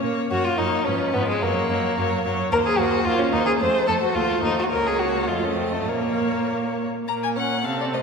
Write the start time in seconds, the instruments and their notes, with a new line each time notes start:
0.03 cello A#2, viola A#3, violin C#5
0.31 cello F#2, viola A#3, violin F#4 C#5
0.44 violin F4
0.58 cello F#2, viola A#3, violin D#4 C#5
0.85 cello G#2, viola F3, violin C#4 B4
1.14 cello G#2, viola F3, violin B3 B4
1.29 violin G#3
1.42 cello F#2, viola F#3, violin A#3 C#5
1.70 cello F#2, viola F#3, violin C#5
1.98 cello F#2, viola F#3, violin C#5
2.25 cello F#2, viola F#3, violin C#5
2.52 cello D#2, viola A#3, violin A#4 C5
2.67 violin G#4
2.78 cello D#2, viola A#3, violin F#4 C5
3.05 cello D#2, viola A#3, violin F4 C5
3.19 violin C#4
3.32 cello D#2, viola A#3, violin D#4 C5
3.46 violin G#4
3.60 cello F2, viola A3, violin C5
3.87 cello F2, viola A3, violin A4 C5
4.02 violin F#4
4.14 cello D#2, viola A3, violin F4 C5
4.43 cello D#2, viola A3, violin D#4 C5
4.59 violin F#4
4.71 cello C#2, viola A#3, violin A#4 C#5
4.87 violin G#4
4.99 violin F#4
5.27 cello F2, viola A3, violin F4 D#5
5.43 violin C#4
5.56 violin C4
5.73 violin A3
5.88 cello A#2, violin A#3 C#5, viola A#3
7.08 cello A#2, viola A#3, violin A#4 A#5
7.23 violin G#5
7.36 viola C#4, violin C#5 F#5
7.64 cello C3, viola C4, violin A4 F5
7.80 violin D5
7.94 viola A3, violin C5 D#5